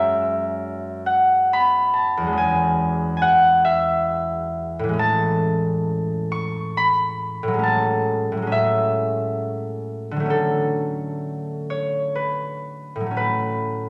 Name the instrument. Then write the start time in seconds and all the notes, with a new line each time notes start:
harp
Already playing: F#2 F#3 G#3 C#4 E5 F#5 G#5
1.06 F#5
1.53 B5
1.94 A5
2.17 E2
2.22 F#3
2.27 G#3
2.32 C#4
2.38 G#5
3.17 G#5
3.22 F#5
3.65 E5
4.79 A2
4.84 E3
4.89 G#3
4.93 C#4
4.99 A5
6.32 C#6
6.77 B5
7.43 A2
7.48 F#3
7.54 G#3
7.59 C#4
7.63 A5
8.32 A2
8.37 F#3
8.42 G#3
8.47 C#4
8.52 E5
10.11 D3
10.16 F#3 A3
10.25 C#4
10.30 A4
11.70 C#5
12.15 B4
12.96 A2
13.00 F#3
13.06 A3
13.11 C#4
13.17 B4